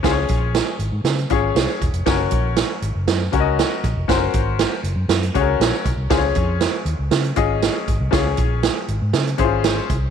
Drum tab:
HH |x-x-x-x-xxx-x-xx|x-x-x-x-x-x-x-x-|x-x-x-x-xxx-x-x-|x-x-x-x-xxx-x-x-|
SD |o---o---o---oo--|o---o---o---o---|o---o---o---oo--|o---o---o---o---|
BD |o-o-------o---o-|o-o-------o---o-|o-o-------o---o-|o-o-------o---o-|

HH |x-x-x-x-xxx-x-x-|
SD |o---o---o---o---|
BD |o-o-------o---o-|